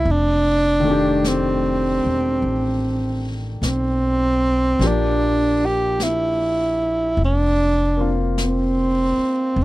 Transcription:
Already playing: tenor saxophone E4
0.05 upright bass F1, brush sweep
0.11 tenor saxophone D4
0.80 grand piano D#3 A3
0.88 grand piano D4 G4
1.24 tenor saxophone C4, brush sweep, snare, hi-hat pedal
2.05 upright bass E1
2.42 upright bass A1, brush sweep
3.62 upright bass B1, brush sweep, snare, hi-hat pedal
3.67 tenor saxophone C4
4.79 upright bass A#1, grand piano F3 A#3 D4 G4, brush sweep, snare
4.87 tenor saxophone D4
5.65 tenor saxophone G4
6.00 tenor saxophone E4, brush sweep, snare, hi-hat pedal
7.17 upright bass F1, brush sweep
7.25 tenor saxophone D4
7.97 grand piano A#3 C4 F4
8.38 brush sweep, snare, hi-hat pedal
8.43 tenor saxophone C4
9.18 muted upright bass stroke
9.56 upright bass E1, brush sweep

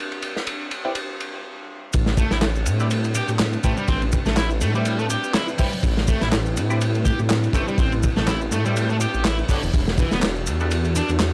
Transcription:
Already playing: ambient pad G3 C4 D4 A4 B4
0.12 ride
0.22 ride
0.36 snare
0.47 ride
0.71 ride
0.85 synth stab C4 E4 G4 B4 D5
0.95 ride
1.20 ride
1.93 detuned saw bass A1, ambient pad G3 C4 D4 B4, kick, ride, shaker
2.06 snare, shaker
2.17 distorted electric guitar A3, kick, ride, shaker
2.31 detuned saw bass A1, distorted electric guitar E4, snare, shaker
2.42 snare, clap, ride, shaker
2.55 shaker
2.66 detuned saw bass A2, ride, shaker
2.80 synth stab C4 E4 G4 B4 D5, shaker
2.90 ride, shaker
3.04 ride, shaker
3.15 distorted electric guitar G4, ride, shaker
3.28 detuned saw bass A2, ride, shaker
3.39 snare, clap, ride, shaker
3.53 ride, shaker
3.64 detuned saw bass A1, distorted electric guitar A3, synth stab C4 E4 G4 B4 G5, kick, ride, shaker
3.77 distorted electric guitar G3, shaker
3.88 detuned saw bass A1, distorted electric guitar C4, kick, ride, shaker
4.02 ride, shaker
4.12 kick, ride, shaker
4.26 detuned saw bass A1, distorted electric guitar A3, snare, shaker
4.37 distorted electric guitar E4, snare, clap, ride, shaker
4.50 shaker
4.61 detuned saw bass A2, distorted electric guitar A3, ride, shaker
4.75 distorted electric guitar G3, synth stab C4 E4 G4 B4 D5, shaker
4.85 ride, shaker
4.99 distorted electric guitar A3, shaker
5.10 distorted electric guitar G4, ride, shaker
5.24 shaker
5.34 distorted electric guitar E4, snare, clap, ride, shaker
5.48 shaker
5.58 distorted electric guitar G3, synth stab C4 E4 G4 B4 G5, kick, open hi-hat, shaker
5.73 shaker
5.83 detuned saw bass A1, ambient pad E4, kick, ride, shaker
5.97 snare, shaker
6.08 distorted electric guitar A3, kick, ride, shaker
6.21 detuned saw bass A1, distorted electric guitar E4, snare, shaker
6.32 snare, clap, ride, shaker
6.46 shaker
6.57 detuned saw bass A2, ride, shaker
6.70 synth stab C4 E4 G4 B4 D5, shaker
6.81 ride, shaker
6.95 ride, shaker
7.05 distorted electric guitar G4, kick, ride, shaker
7.19 detuned saw bass A2, shaker
7.30 snare, clap, ride, shaker
7.43 ride, shaker
7.53 detuned saw bass A1, distorted electric guitar A3, synth stab C4 E4 G4 B4 G5, kick, ride, shaker
7.68 distorted electric guitar G3, shaker
7.78 detuned saw bass A1, distorted electric guitar C4, kick, ride, shaker
7.92 ride, shaker
8.03 kick, ride, shaker
8.17 detuned saw bass A1, distorted electric guitar A3, snare, shaker
8.27 distorted electric guitar E4, snare, clap, ride, shaker
8.41 shaker
8.52 detuned saw bass A2, distorted electric guitar A3, ride, shaker
8.65 distorted electric guitar G3, synth stab C4 E4 G4 B4 D5, shaker
8.76 ride, shaker
8.90 distorted electric guitar A3, shaker
9.01 distorted electric guitar G4, ride, shaker
9.14 detuned saw bass A1, shaker
9.25 distorted electric guitar E4, snare, clap, ride, shaker
9.38 shaker
9.49 distorted electric guitar D3, synth stab G3 B3 D4 F#4 C#5, ambient pad G3 D4 F#4 A4, kick, open hi-hat, shaker
9.63 detuned saw bass E1, shaker
9.74 detuned saw bass E1, kick, ride, shaker
9.87 snare, shaker
9.98 distorted electric guitar E3, kick, ride, shaker
10.11 detuned saw bass E1, distorted electric guitar B3, snare, shaker
10.22 snare, clap, ride, shaker
10.36 shaker
10.47 detuned saw bass E2, ride, shaker
10.60 synth stab G3 B3 D4 F#4 A4, shaker
10.71 ride, shaker
10.85 ride, shaker
10.95 distorted electric guitar D4, ride, shaker
11.09 detuned saw bass E2, ride, shaker
11.20 snare, clap, ride, shaker

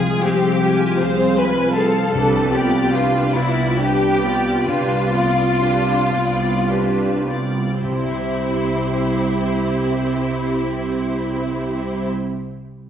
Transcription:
Already playing: cello section C2, harp C3 F3 C4 F4 C5, viola section G#3 F4, violin section G#4 G#5
0.24 harp C4, viola section C4 G#4, violin section G4 F5
0.62 viola section G#3 F4, harp F4, violin section G#5
1.00 cello section C2, harp C4, viola section C4 G#4, violin section C5 F5
1.38 viola section G#3 F4, violin section B4 G#5, harp C5
1.74 viola section C4 G#4, harp F4, violin section A4 F5
2.14 cello section C2, harp C3, viola section D4 G4, violin section B4
2.53 viola section B3 F4, harp B3, violin section G4 D5
2.93 viola section D4 G4, harp D4, violin section F4 B4
3.35 cello section C2, viola section B3 F4, violin section E4 D5, harp G4
3.79 viola section D4 G4, violin section G4 B4, harp B4
4.23 viola section B3 F4, harp G4, violin section D5
4.66 cello section C2, harp C3, viola section D4 G4, violin section F4 B4
5.12 viola section B3 F4, harp B3, violin section D5
5.61 harp D4, viola section D4 G4, violin section B4
6.13 cello section C2, viola section B3 F4, harp G4, violin section D5
6.69 viola section D4 G4, harp B4, violin section B4
7.26 viola section B3 F4, harp G4, violin section D5
7.81 cello section C2, harp C3, viola section C4 G4, violin section E4 C5
7.89 harp G3
7.97 harp C4
8.04 harp E4
8.11 harp C5

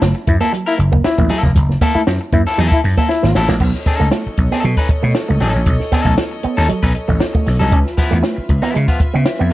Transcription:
0.01 slap bass F#1, clean electric guitar A3, muted clean electric guitar stroke, snare, closed hi-hat
0.15 muted clean electric guitar stroke
0.27 slap bass F#2, trombone E4, muted clean electric guitar stroke, kick, closed hi-hat
0.41 clean electric guitar A#3 E4 A4, snare
0.53 clean electric guitar F#3, muted clean electric guitar stroke, closed hi-hat
0.66 clean electric guitar A#3 E4 A#4, trombone E4
0.79 slap bass F#1, muted clean electric guitar stroke, closed hi-hat
0.92 clean electric guitar A#3, muted clean electric guitar stroke, kick
1.04 trombone E4, muted slap bass stroke, muted clean electric guitar stroke, snare, closed hi-hat
1.18 slap bass A1, clean electric guitar A#3, muted clean electric guitar stroke, kick
1.29 clean electric guitar F#3 A#3 E4 A4, closed hi-hat
1.43 slap bass F1, muted clean electric guitar stroke, kick, snare
1.56 slap bass F#1, kick, closed hi-hat
1.69 muted clean electric guitar stroke, snare
1.81 clean electric guitar A#3 E4 A4, kick, closed hi-hat
1.95 clean electric guitar A3, trombone E4, muted slap bass stroke
2.07 slap bass F#2, muted clean electric guitar stroke, snare, closed hi-hat
2.21 muted clean electric guitar stroke
2.32 slap bass F#2, clean electric guitar A#3, trombone E4, kick, closed hi-hat
2.47 clean electric guitar A#3 E4 A4, snare
2.58 slap bass E2, clean electric guitar F#3 A#3 E4 A4, closed hi-hat
2.72 trombone E4, kick
2.84 slap bass F#2, muted clean electric guitar stroke, open hi-hat
2.97 clean electric guitar A#3 E4 A4, kick, snare
3.08 trombone E4, muted clean electric guitar stroke, snare
3.23 slap bass G#1, clean electric guitar A#3, muted clean electric guitar stroke, snare
3.35 slap bass A1, clean electric guitar A#3 E4 A4, muted clean electric guitar stroke, snare
3.48 slap bass A#1, clean electric guitar A3, muted clean electric guitar stroke, snare
3.60 slap bass B1, clean electric guitar B3, string section A4 C#5 D#5, kick, crash
3.74 snare
3.86 clean electric guitar C#4 D#4 A4, muted clean electric guitar stroke, kick, closed hi-hat
4.00 slap bass C#2, clean electric guitar A3, closed hi-hat
4.11 clean electric guitar A3, muted clean electric guitar stroke, snare, closed hi-hat
4.26 muted slap bass stroke, muted clean electric guitar stroke
4.37 slap bass B1, muted clean electric guitar stroke, kick, closed hi-hat
4.51 clean electric guitar B3 C#4 D#4 A4, snare
4.63 slap bass B2, clean electric guitar F#3, muted clean electric guitar stroke, closed hi-hat
4.77 clean electric guitar C#4 D#4 B4, kick
4.89 muted slap bass stroke, muted clean electric guitar stroke, kick, closed hi-hat
5.03 slap bass B2, clean electric guitar A3, muted clean electric guitar stroke
5.14 muted clean electric guitar stroke, snare, closed hi-hat
5.28 slap bass C#2, clean electric guitar A3, muted clean electric guitar stroke
5.40 slap bass A1, clean electric guitar F#3 C#4 D#4 A4, open hi-hat
5.54 slap bass A#1, muted clean electric guitar stroke, snare, closed hi-hat
5.66 slap bass B1, kick, closed hi-hat
5.80 muted clean electric guitar stroke, snare
5.92 clean electric guitar B3 C#4 D#4 A4, kick, closed hi-hat
6.05 slap bass B1, clean electric guitar A3, kick, closed hi-hat
6.18 muted clean electric guitar stroke, snare, closed hi-hat
6.31 muted clean electric guitar stroke
6.43 clean electric guitar B3, muted slap bass stroke, closed hi-hat
6.57 slap bass D#2, clean electric guitar C#4 D#4 A4, snare
6.69 clean electric guitar F#3, muted clean electric guitar stroke, muted slap bass stroke, closed hi-hat
6.83 slap bass B1, clean electric guitar C#4 D#4 B4, kick
6.94 muted clean electric guitar stroke, closed hi-hat
7.08 slap bass A1, clean electric guitar A3, muted clean electric guitar stroke, kick
7.20 muted clean electric guitar stroke, snare, closed hi-hat
7.33 clean electric guitar A3, muted clean electric guitar stroke, kick
7.46 slap bass B1, muted clean electric guitar stroke, snare, open hi-hat
7.59 slap bass C2, clean electric guitar F#3 C#4 D#4 A4
7.72 slap bass C#2, clean electric guitar C#4, string section F4 B4 E5, kick, closed hi-hat
7.86 snare
7.97 clean electric guitar F3 B3 E4, muted clean electric guitar stroke, kick, closed hi-hat
8.11 slap bass E2, clean electric guitar A3, closed hi-hat
8.23 clean electric guitar A3, muted clean electric guitar stroke, snare, closed hi-hat
8.36 muted clean electric guitar stroke, muted slap bass stroke
8.49 slap bass C#2, muted clean electric guitar stroke, kick, closed hi-hat
8.62 clean electric guitar F3 B3 E4, snare
8.74 slap bass C#3, clean electric guitar G#3, muted clean electric guitar stroke, closed hi-hat
8.88 clean electric guitar F3 B3 F4, kick
9.00 muted clean electric guitar stroke, muted slap bass stroke, kick, closed hi-hat
9.14 slap bass C#3, clean electric guitar B3, muted clean electric guitar stroke
9.26 muted clean electric guitar stroke, snare, closed hi-hat
9.39 slap bass F2, clean electric guitar B3, muted clean electric guitar stroke

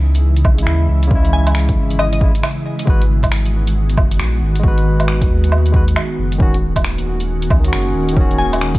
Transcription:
Already playing: sub bass C#2, ambient pad C#3 E3 G#3 E4
0.15 closed hi-hat
0.36 closed hi-hat
0.45 sub bass B1, kick, low woodblock
0.54 tine electric piano C#3, closed hi-hat
0.59 tine electric piano G#3
0.63 tine electric piano E4
0.67 sub bass D#2, finger snap
0.89 sub bass C#2
1.03 closed hi-hat
1.07 sub bass C#2, tine electric piano C#3 G#3, kick
1.15 tine electric piano E4
1.25 closed hi-hat
1.33 synth pluck G#5
1.47 closed hi-hat, low woodblock
1.55 finger snap
1.69 kick, closed hi-hat
1.77 sub bass G#1
1.90 closed hi-hat
1.99 synth pluck D#5, low woodblock
2.13 synth pluck D#5, closed hi-hat
2.20 tine electric piano C#3 G#3 E4, kick
2.35 closed hi-hat
2.43 finger snap, low woodblock
2.79 closed hi-hat
2.85 sub bass G#1, ambient pad D#3 B3 F#4, tine electric piano G#3 F#4, kick
2.90 tine electric piano B4
3.02 closed hi-hat
3.23 kick, closed hi-hat, low woodblock
3.32 finger snap
3.45 closed hi-hat
3.67 closed hi-hat
3.89 closed hi-hat
3.97 sub bass F#1, kick, low woodblock
4.11 closed hi-hat
4.20 sub bass A#1, finger snap
4.42 sub bass G#1
4.56 closed hi-hat
4.60 sub bass G#1, tine electric piano G#3, kick
4.64 tine electric piano F#4 B4
4.78 closed hi-hat
5.00 closed hi-hat, low woodblock
5.08 finger snap
5.21 kick, closed hi-hat
5.30 sub bass D#2
5.44 closed hi-hat
5.52 low woodblock
5.66 closed hi-hat
5.72 tine electric piano G#3 F#4, kick
5.76 tine electric piano B4
5.88 closed hi-hat
5.96 finger snap, low woodblock
6.18 sub bass F#1
6.32 closed hi-hat
6.38 sub bass D#1, tine electric piano D#3 C#4, ambient pad D#3 A#3 C#4 F#4, synth texture G#3 G#4, kick
6.42 tine electric piano F#4
6.54 closed hi-hat
6.76 kick, closed hi-hat, low woodblock
6.85 finger snap
6.98 closed hi-hat
7.20 closed hi-hat
7.42 closed hi-hat
7.50 sub bass C#2, kick, low woodblock
7.60 tine electric piano D#3
7.64 tine electric piano C#4 F#4, closed hi-hat
7.73 sub bass F#1, finger snap
7.95 sub bass D#1
8.09 tine electric piano D#3, closed hi-hat
8.16 sub bass D#1, tine electric piano C#4, kick
8.21 tine electric piano F#4
8.31 closed hi-hat
8.38 synth pluck G#5
8.53 closed hi-hat, low woodblock
8.61 finger snap
8.75 kick, closed hi-hat

